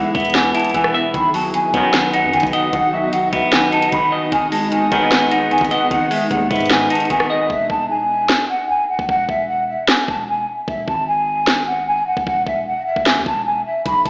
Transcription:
Already playing: B1 E3 G#3 B3 E4 G#4 E5 F#5
0.15 E2 B3 E5, kick, closed hi-hat
0.20 closed hi-hat
0.25 closed hi-hat
0.30 closed hi-hat
0.35 E3 G#5, snare, closed hi-hat
0.55 E4 A5, closed hi-hat
0.60 closed hi-hat
0.65 closed hi-hat
0.69 closed hi-hat
0.74 E1 E3 G#5, kick, closed hi-hat
0.84 cross-stick
0.94 E5
1.14 B1 D#3 D#4 F#4 D#5 B5, kick, closed hi-hat
1.34 F#3 A5, open hi-hat
1.54 D#3 G#5, closed hi-hat
1.74 B1 F#2 D#3 B3, kick, closed hi-hat
1.94 D#3, snare, closed hi-hat
2.13 D#4 F#5, closed hi-hat
2.23 F#2
2.33 D#3 G#5, closed hi-hat
2.40 B1, kick, closed hi-hat
2.47 closed hi-hat
2.53 D#5 F#5, closed hi-hat
2.73 B1 D#3 F#5, kick, closed hi-hat
2.93 F#3 E5
3.13 D#3 F#5, closed hi-hat
3.33 B1 B3 E5, kick, closed hi-hat
3.53 D#3 G#5, snare, closed hi-hat
3.72 D#4 A5, closed hi-hat
3.82 closed hi-hat
3.92 B1 D#3 B5, kick, closed hi-hat
4.12 D#5
4.32 G#1 D#3 B3 G#4 G#5, kick, closed hi-hat
4.52 G#3 A5, open hi-hat
4.72 D#3 G#5, closed hi-hat
4.92 G#1 B1 G#2 D#3 B3, kick, closed hi-hat
5.12 D#3, snare, closed hi-hat
5.31 D#4 F#5, closed hi-hat
5.51 D#3 G#5, closed hi-hat
5.58 G#1, kick, closed hi-hat
5.65 closed hi-hat
5.71 D#5 F#5, closed hi-hat
5.91 G#1 D#3 F#5, kick, closed hi-hat
6.11 G#3 E5, open hi-hat
6.31 D#2 D#3 F#5, kick, closed hi-hat
6.51 G#2 B3 E5, kick, closed hi-hat
6.56 closed hi-hat
6.61 closed hi-hat
6.66 closed hi-hat
6.70 D#3 G#5, snare, closed hi-hat
6.90 D#4 A5, closed hi-hat
6.95 closed hi-hat
7.00 closed hi-hat
7.05 closed hi-hat
7.10 G#1 D#3 G#5, kick, closed hi-hat
7.20 cross-stick
7.30 D#5
7.50 E1 E5, kick
7.70 E1 A5, kick
7.90 G#5
8.29 snare
8.49 F#5
8.69 G#5
8.89 F#5
8.99 E1, kick
9.09 E1 F#5, kick
9.29 E1 E5, kick
9.49 F#5
9.69 E5
9.88 G#5, snare
10.08 E1 A5, kick
10.28 G#5
10.68 E1 E5, kick
10.88 G#1 A5, kick
11.08 G#5
11.47 snare
11.67 F#5
11.87 G#5
12.07 F#5
12.17 E1, kick
12.27 E1 F#5, kick
12.47 E1 E5, kick
12.67 F#5
12.87 E5
12.96 E1, kick
13.06 G#5, snare
13.16 E2
13.26 E1 A5, kick
13.46 G#5
13.66 E5
13.86 B1 B5, kick, closed hi-hat
14.05 B1 A5, kick, closed hi-hat

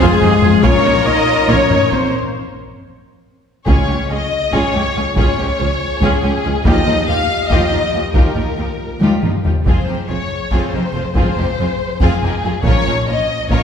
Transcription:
Already playing: F4 G#4 F5 C6
0.00 F1 F2 G#3 F4 G#4, taiko
0.21 F1 F2 D#4 G4, taiko low-mid
0.42 F1 F2 F4 G#4, taiko low-mid
0.63 A#1 A#2 C#4 F4 A#4 C#5, taiko
0.84 A#1 A#2 D#4 C5
1.06 A#1 A#2 D#4 F4 C#5 D#5
1.48 A#1 A#2 C#4 F4 C#5, taiko
1.69 A#1 A#2 D#4 C5, taiko low-mid
1.91 A#1 A#2 C4 F4 C5 C#5, taiko low-mid
3.67 C#2 F3 C#4 F4 G#4 C#5, taiko
3.87 C#2 C#4 F4 G4
4.09 C#2 C#4 F4 G#4 D#5
4.52 C#2 C#4 F4 G#4 C#5, taiko
4.74 C#2 C#4 F4 G4
4.95 C#2 C#4 F4 G#4
5.16 C#2 C#4 F4 G#4 C#5, taiko
5.38 C#2 C#4 F4 G4
5.59 C#2 C#4 F4 G#4
6.01 C#2 C#4 F4 G#4, taiko
6.23 C#2 C#4 F4 G4
6.44 C#2 C#4 F4 G#4
6.64 D#2 F3 D#4 F4 G4 D#5, taiko
6.86 D#2 F3 D#4 F4
7.08 D#2 F3 D#4 F4 G4 F5
7.48 D#2 F3 D#4 F4 G4 D#5, taiko
7.72 D#2 F3 D#4 F4
7.93 D#2 F3 D#4 F4 G4
8.14 D#2 F3 D#4 F4 G4 A#4, taiko
8.36 D#2 F3 D#4 F4
8.57 D#2 F3 D#4 F4 G4
9.01 D#2 F3 G3 D#4 F4 G4, taiko high
9.23 D#2 F3 D#4 F4, taiko low-mid
9.44 D#2 F3 D#4 F4 G4, taiko low
9.64 F1 F2 F3 C4 F4 G#4 C5, taiko
9.87 F1 F2 F3 C4 D#4 G4
10.09 F1 F2 F3 C4 F4 G#4 C#5
10.51 F1 F2 F3 C4 F4 G#4 C5, taiko
10.73 F1 F2 F3 C4 D#4 G4
10.94 F1 F2 F3 C4 F4 G#4
11.15 F1 F2 F3 C4 F4 G#4 C5, taiko
11.37 F1 F2 F3 C4 D#4 G4
11.59 F1 F2 F3 C4 F4 G#4
12.01 F1 F2 F3 C4 F4 G#4, taiko
12.22 F1 F2 F3 C4 D#4 G4
12.44 F1 F2 F3 C4 F4 G#4
12.64 A#1 A#2 F3 C#4 F4 A#4 C#5, taiko
12.86 A#1 A#2 F3 C#4 D#4 G#4
13.07 A#1 A#2 F3 C#4 F4 A#4 D#5
13.49 A#1 A#2 F3 C#4 F4 A#4 C#5, taiko

